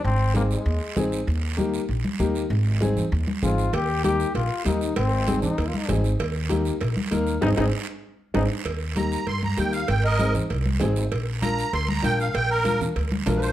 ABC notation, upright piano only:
X:1
M:4/4
L:1/8
Q:1/4=195
K:Eb
V:1 name="Upright piano"
z2 [CEA] z3 [CEA] z | z2 [B,EG] z3 [B,EG] z | z2 [CEA] z3 [CEA] z | z2 [B,EG] z3 [B,EG] z |
z2 [CEA] z3 [CEA] z | z2 [B,EG] z3 [B,EB] z | [CEA] [CEA] z4 [CEA] z | z2 [B,EG] z3 [B,EG] z |
z2 [CEA] z3 [CEA] z | z2 [DFB] z3 [DFB] z | z2 [DFB] z3 [DFB] z |]